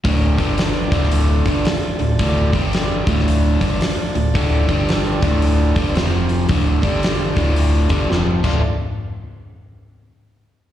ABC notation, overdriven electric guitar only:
X:1
M:4/4
L:1/8
Q:"Swing" 1/4=112
K:Dm
V:1 name="Overdriven electric guitar" clef=bass
[D,,A,,D,] [G,,D,G,]2 [D,,A,,D,]2 [G,,D,G,] z [D,,A,,] | [D,,A,,D,] [G,,D,G,]2 [D,,A,,D,]2 [G,,D,G,] z [D,,A,,] | [D,,A,,D,] [G,,D,G,]2 [D,,A,,D,]2 [G,,D,G,] [F,,C,F,]2 | [D,,A,,D,] [G,,D,G,]2 [D,,A,,D,]2 [G,,D,G,] [F,,C,F,] [D,,A,,D,A,F] |
z8 |]